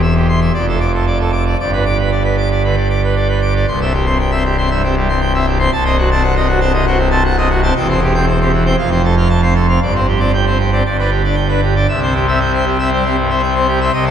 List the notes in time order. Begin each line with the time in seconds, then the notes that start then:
Already playing: E1 E2
0.02 E5
0.16 G4
0.29 C6
0.41 E5
0.54 F1 F2 D5
0.68 A4
0.80 D6
0.94 A4
1.07 D5
1.20 A4
1.32 D6
1.46 D5
1.60 G1 G2 D5
1.73 B4
1.86 D6
1.99 B4
2.11 D5
2.25 B4
2.38 D6
2.51 D5
2.64 D3 B4
2.77 D5
2.90 D6
3.04 B4
3.16 D5
3.29 B4
3.42 D6
3.55 D5
3.67 C1 C2 C6
3.81 C4 E5
3.94 G4
4.06 C4 C6
4.19 G5
4.31 C4 E5
4.45 G4
4.57 C4 C6
4.71 G2 E5
4.84 C4 G4
4.96 G3
5.09 C4 C6
5.21 G5
5.34 C4 E5
5.46 G4
5.59 C4 C6
5.72 C1 C2 A5
5.85 C4 D#5
5.98 F#4
6.11 C4 A5
6.22 F#5
6.36 C4 D#5
6.48 F#4
6.60 C4 A5
6.74 C3 D#5
6.87 C4 F#4
6.98 C4
7.11 C4 A5
7.25 F#5
7.37 C4 D#5
7.50 F#4
7.63 C4 A5
7.76 E1 E2 G5
7.89 C4 C5
8.02 G4
8.15 C4 G5
8.28 C5
8.41 C4 G4
8.53 E3
8.66 C4 G5
8.78 F1 F2 F5
8.91 C4 C5
9.04 A4
9.17 C4 F5
9.30 A5
9.42 C4 C5
9.55 A4
9.69 C4 F5
9.82 G1 G2 D5
9.96 C4 C5
10.08 G4
10.19 C4 D5
10.34 G5
10.46 C4 C5
10.59 G4
10.72 C4 D5
10.85 G1 G2 D5
10.99 D4 B4
11.10 G4
11.24 D4 D5
11.35 G5
11.49 D4 B4
11.62 G4
11.76 D4 D5
11.88 C2 C3 E5
12.03 C4 C5
12.15 G4
12.28 C4 E5
12.41 G5
12.54 C4 C5
12.66 G4
12.79 C4 E5
12.93 G3 C5
13.05 C4 G4
13.19 G2
13.30 C4 E5
13.43 G5
13.55 C4 C5
13.67 G4
13.81 C4 E5
13.93 C2 C3 D#5
14.06 C4 A4